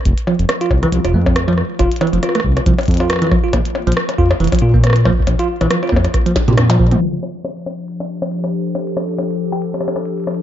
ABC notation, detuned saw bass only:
X:1
M:4/4
L:1/16
Q:"Swing 16ths" 1/4=138
K:F
V:1 name="Detuned saw bass" clef=bass
F,,, z2 F,,, z2 C,, z C,, z F,,4 z2 | F,,, z2 F,,, z2 C,, z C,, z F,,4 z2 | B,,, z2 B,,, z2 F,, z F,,, z B,,4 z2 | B,,, z2 B,,, z2 F,, z4 B,,4 z |
z16 | z16 |]